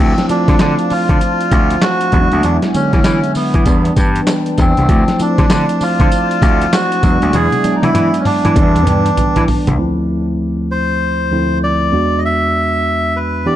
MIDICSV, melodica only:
0, 0, Header, 1, 2, 480
1, 0, Start_track
1, 0, Tempo, 612245
1, 1910, Time_signature, 4, 2, 24, 8
1, 10630, End_track
2, 0, Start_track
2, 0, Title_t, "Melodica"
2, 0, Program_c, 0, 22
2, 0, Note_on_c, 0, 60, 89
2, 205, Note_off_c, 0, 60, 0
2, 236, Note_on_c, 0, 62, 94
2, 715, Note_on_c, 0, 65, 119
2, 727, Note_off_c, 0, 62, 0
2, 1433, Note_on_c, 0, 66, 114
2, 1454, Note_off_c, 0, 65, 0
2, 1909, Note_on_c, 0, 62, 100
2, 1926, Note_off_c, 0, 66, 0
2, 2017, Note_off_c, 0, 62, 0
2, 2157, Note_on_c, 0, 61, 91
2, 2602, Note_off_c, 0, 61, 0
2, 2634, Note_on_c, 0, 59, 87
2, 3080, Note_off_c, 0, 59, 0
2, 3612, Note_on_c, 0, 60, 95
2, 4088, Note_on_c, 0, 62, 89
2, 4095, Note_off_c, 0, 60, 0
2, 4568, Note_on_c, 0, 65, 119
2, 4573, Note_off_c, 0, 62, 0
2, 5280, Note_on_c, 0, 66, 111
2, 5300, Note_off_c, 0, 65, 0
2, 5760, Note_on_c, 0, 68, 115
2, 5769, Note_off_c, 0, 66, 0
2, 6080, Note_on_c, 0, 63, 69
2, 6086, Note_off_c, 0, 68, 0
2, 6144, Note_off_c, 0, 63, 0
2, 6145, Note_on_c, 0, 64, 112
2, 6429, Note_on_c, 0, 61, 68
2, 6439, Note_off_c, 0, 64, 0
2, 6470, Note_off_c, 0, 61, 0
2, 6473, Note_on_c, 0, 62, 105
2, 7400, Note_off_c, 0, 62, 0
2, 8399, Note_on_c, 0, 72, 108
2, 9083, Note_off_c, 0, 72, 0
2, 9123, Note_on_c, 0, 74, 105
2, 9552, Note_on_c, 0, 75, 88
2, 9568, Note_off_c, 0, 74, 0
2, 9591, Note_off_c, 0, 75, 0
2, 9605, Note_on_c, 0, 76, 127
2, 10319, Note_on_c, 0, 71, 92
2, 10339, Note_off_c, 0, 76, 0
2, 10556, Note_on_c, 0, 74, 103
2, 10561, Note_off_c, 0, 71, 0
2, 10630, Note_off_c, 0, 74, 0
2, 10630, End_track
0, 0, End_of_file